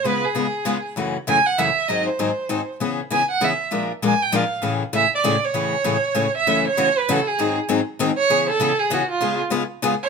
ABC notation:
X:1
M:3/4
L:1/8
Q:"Swing" 1/4=196
K:A
V:1 name="Violin"
B G4 z | z2 g f e2 | ^d ^B4 z | z2 g f e2 |
z2 _a =g =f2 | z2 e d2 c- | c4- c e- | [K:F#m] e c2 B A G- |
G z4 c- | c A2 G F ^E- | ^E z4 c |]
V:2 name="Steel-string acoustic guitar"
[C,G,B,^EG] z [C,G,B,EG] z [C,G,B,EG] z | [F,,C,E,A,CF] z [F,,C,E,A,CF] z [F,,C,E,A,CF] z | [G,,^D,F,^B,^DG] z [G,,D,F,B,DG] z [G,,D,F,B,DG] z | [C,E,B,CG] z [C,E,B,CG] z [C,E,B,CG] z |
[_B,,=F,_A,D=F_B] z [B,,F,A,DFB] z [B,,F,A,DFB] z | [A,,C,E,A,CG] z [A,,C,E,A,CG] z [A,,C,E,A,CG] z | [A,,C,E,A,CG] z [A,,C,E,A,CG] z [A,,C,E,A,CG] z | [K:F#m] [F,,C,E,A,CF] z [F,,C,E,A,CF] z [F,,C,E,A,CF] z |
[G,,^D,F,^B,^DG] z [G,,D,F,B,DG] z [G,,D,F,B,DG] z | [C,E,B,CG] z [C,E,B,CG] z [C,E,B,CG] z | [C,G,B,^EG] z [C,G,B,EG] z [C,G,B,EG] z |]